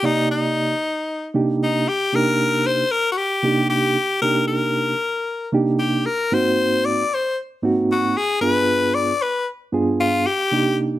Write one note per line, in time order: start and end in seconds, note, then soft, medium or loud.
0.03 0.73 C3 medium
0.03 0.73 A#3 medium
0.03 0.74 D#4 medium
0.03 0.30 D#4 medium
0.03 0.74 G4 medium
0.03 0.74 D5 medium
0.31 1.31 D#4 medium
1.34 1.86 C3 medium
1.34 1.86 A#3 medium
1.34 1.87 D4 medium
1.34 1.87 D#4 medium
1.34 1.87 G4 medium
1.63 1.90 D#4 medium
1.88 2.17 G4 medium
2.12 2.83 C3 medium
2.12 2.83 A#3 medium
2.12 2.84 D4 medium
2.12 2.84 D#4 medium
2.12 2.84 G4 medium
2.12 2.68 A#4 loud
2.67 2.93 C5 medium
2.91 3.11 A#4 loud
3.12 3.19 F#4 medium
3.18 3.69 G4 medium
3.43 3.95 C3 medium
3.43 3.96 A#3 medium
3.43 3.96 D4 medium
3.43 3.96 D#4 medium
3.43 3.97 G4 medium
3.70 4.18 G4 medium
4.22 4.93 C3 medium
4.22 4.93 A#3 medium
4.22 4.93 D4 medium
4.22 4.93 D#4 medium
4.22 4.93 G4 medium
4.22 4.46 A#4 loud
4.48 5.49 A#4 medium
5.52 6.05 C3 medium
5.52 6.05 A#3 medium
5.52 6.06 D4 medium
5.52 6.06 D#4 medium
5.52 6.06 G4 medium
5.80 6.07 G4 medium
6.06 6.36 A#4 medium
6.32 7.02 G#2 medium
6.32 7.02 A#3 medium
6.32 7.02 C4 medium
6.32 7.03 D#4 medium
6.32 7.03 F#4 medium
6.32 6.87 C5 loud
6.85 7.16 D5 medium
7.14 7.38 C5 medium
7.62 8.15 G#2 medium
7.62 8.15 A#3 medium
7.62 8.15 C4 medium
7.62 8.15 D#4 medium
7.62 8.16 F#4 medium
7.92 8.18 F#4 medium
8.17 8.41 G#4 medium
8.41 9.12 G2 medium
8.41 9.12 B3 medium
8.41 9.12 D4 medium
8.41 9.13 F4 medium
8.41 9.13 G#4 medium
8.41 8.96 B4 medium
8.95 9.24 D5 medium
9.22 9.47 B4 medium
9.72 10.25 G2 medium
9.72 10.25 B3 medium
9.72 10.25 D4 medium
9.72 10.25 F4 medium
9.72 10.26 G#4 medium
10.01 10.28 F4 loud
10.26 10.78 G4 loud
10.52 10.99 C3 medium
10.52 10.99 A#3 medium
10.52 10.99 D4 medium
10.52 10.99 D#4 medium
10.52 10.99 G4 medium